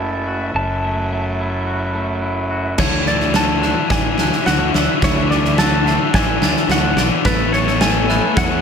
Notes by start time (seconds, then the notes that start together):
Already playing: F#1 A3 F#4 E5 A5
0.00 E4
0.27 F#4
0.54 F#1 F#3 E4 A5
0.83 A3
1.12 A3
1.39 E4
1.67 F#4
1.95 A3
2.22 E4
2.51 F#4
2.78 D2 D3 E3 D4 F#4 C#5 E5 G#6, kick, snare, crash
2.86 D3 E3
2.94 D3 E3
3.01 D3 E3
3.06 D3 E3 D5, snare
3.17 D3 E3, snare
3.24 D3 E3
3.32 D3 E3 F#4, snare
3.36 A5
3.40 D3 E3
3.48 D3 E3
3.55 D3 E3
3.62 D3 E3 D4 F#6, snare
3.71 D3 E3
3.79 D3 E3
3.86 D3 E3
3.90 A1 D3 E3 D5 G#5, kick, snare
4.01 D3 E3
4.09 D3 E3
4.17 D2 D3 E3 D4 F#6, snare
4.24 D3 E3
4.32 D3 E3, snare
4.39 D3 E3
4.46 D2 D3 E3 F#4 F#5, snare
4.54 D3 E3
4.61 D3 E3
4.70 D3 E3
4.74 D2 D5 E6, snare
4.79 D3 E3
4.86 D3 E3
4.94 D3 E3
5.02 D2 D3 E3 C#5 D6, kick, snare
5.10 D3 E3
5.18 D3 E3
5.25 D3 E3
5.30 D3 E3 D5, snare
5.41 D3 E3, snare
5.47 D3 E3
5.57 D3 E3 F#4 A5 E6, snare
5.64 D3 E3
5.72 D3 E3
5.79 D3 E3
5.86 D3 E3 D4 F#6, snare
5.94 D3 E3
6.02 D3 E3
6.10 A1 D3 E3 D5, kick, snare
6.15 D3 G#5
6.19 E3
6.25 D3 E3
6.33 D3 E3
6.41 D2 D3 E3 D4 A6, snare
6.49 D3 E3
6.56 D3 E3, snare
6.65 D2 D3 E3
6.69 D3 E3 F#4 F#5, snare
6.80 D3 E3
6.87 D3 E3
6.95 B1 D3 E3 D5, snare
7.03 D3 E3
7.10 D3 E3
7.19 D3 E3
7.24 A1 A3 B3 A4 B4 C#5 A6, kick, snare
7.33 A3 B3
7.41 A3 B3
7.48 A3 B3
7.53 C#5, snare
7.57 A3 B3
7.63 A3 B3
7.67 snare
7.72 A3 B3
7.79 A3 B3 A4 G#5, snare
7.88 A3 B3
7.94 A3 B3
8.03 A3 B3
8.09 A3 B3 E4 F#6, snare
8.18 A3 B3
8.25 A3 B3
8.34 E2 A3 B3 C#5, kick, snare
8.38 F#5
8.42 A3 B3
8.49 A3 B3
8.56 A3 B3